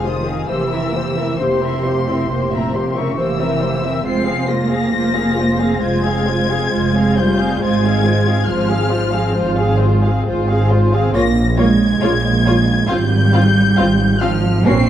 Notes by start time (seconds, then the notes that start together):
Already playing: F1
0.04 D#3 G#3 F4 C5 D#6
0.25 C4 G#4 F5
0.47 F1 E3 A#3 G4 C5 E6
0.70 C4 E4 A#4 E5
0.92 A#3 G4 C5
1.16 C4 E4 A#4 E5
1.39 F1 C3 A#3 G4 C5 C6
1.61 C4 E4 A#4 E5
1.84 A#3 G4 C5
2.07 C4 E4 A#4 E5
2.31 F1 A#3 G4 C5
2.52 A#2 C4 E4 A#4 E5 A#5
2.73 C3 A#3 G4 C5 C6
2.95 C#3 C4 E4 A#4 E5 C#6
3.16 F1 E3 A#3 G4 C5 E6
3.39 C4 E4 A#4 E5
3.61 A#3 G4 C5
3.83 C4 E4 A#4 E5
4.04 F1 G#3 C4 F4 C5 C7
4.26 C4 G#4 F5
4.46 G#3 A#3 F4 C5
4.50 A#6
4.70 C4 G#4 F5
4.92 F1 G#3 F4 C5
5.14 C4 G#4 F5
5.35 G#3 F4 C5
5.59 C4 G#4 F5
5.80 F1 G#3 F4 C5 G#6
6.04 C4 G#4 F5
6.26 G#3 F4 C5
6.49 C4 G#4 F5
6.71 F1 G#3 F4 C5
6.94 C4 G#4 F5
7.17 G3 G#3 F4 C5 G6
7.38 C4 G#4 F5
7.61 G#1 G#3 F4 C5 G#6
7.83 C4 G#4 F5
8.05 G#3 F4 C5
8.26 C4 G#4 F5
8.47 G#1 F3 G#3 F4 C5 F6
8.68 C4 G#4 F5
8.90 G#3 F4 C5
9.12 C4 G#4 F5
9.34 G#3 F4 C5
9.38 G#1 F4
9.57 C4 G#4 F5
9.79 F4 C5
9.85 G#3 F4
10.02 G#4 F5
10.06 C4 G#4
10.25 G#1 F4 C5
10.29 G#3 F4
10.48 C4 G#4 F5
10.70 G#3 F4 C5
10.92 C4 G#4 F5
11.13 A#1 A#3 F4 C#5 A#6
11.57 G#3 A#3 F4 C#5 G#6
12.01 A#1 A#3 F4 C#5
12.45 A#3 F4 C#5
12.87 G#1 G3 C4 F4 F5 G6
13.32 C4 F4 F5
13.76 G#1 C4 F4 F5
14.20 F3 C4 F4 F5 F6
14.64 A#1 C4 C#4 F#4 A#4 C#5 C7